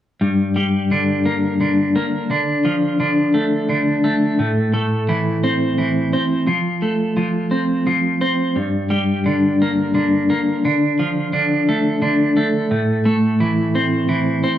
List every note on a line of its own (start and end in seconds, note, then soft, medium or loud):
0.21 1.96 G2 medium
0.56 2.30 G3 soft
0.91 1.59 D3 medium
1.26 1.94 A#3 soft
1.61 2.29 D3 soft
1.96 2.30 A#3 medium
2.31 2.99 D3 medium
2.65 4.39 F3 medium
3.00 3.68 D3 medium
3.34 4.04 A3 soft
3.69 4.39 D3 medium
4.04 4.74 A3 medium
4.39 6.14 A2 medium
4.74 6.48 A3 medium
5.09 5.77 E3 medium
5.44 6.12 C4 medium
5.78 6.47 E3 soft
6.13 6.48 C4 medium
6.47 7.16 F3 medium
6.82 8.56 A3 soft
7.17 7.86 F3 medium
7.51 8.20 C4 medium
7.87 8.57 F3 medium
8.21 8.57 C4 medium
8.56 10.30 G2 medium
8.90 10.64 G3 soft
9.26 9.93 D3 medium
9.62 10.29 A#3 medium
9.94 10.64 D3 medium
10.30 10.65 A#3 soft
10.65 11.32 D3 medium
10.99 12.72 F3 soft
11.33 12.01 D3 medium
11.69 12.36 A3 medium
12.02 12.71 D3 medium
12.37 13.05 A3 medium
12.71 14.43 A2 medium
13.05 14.58 A3 medium
13.40 14.08 E3 medium
13.75 14.42 C4 medium
14.09 14.58 E3 medium
14.44 14.58 C4 medium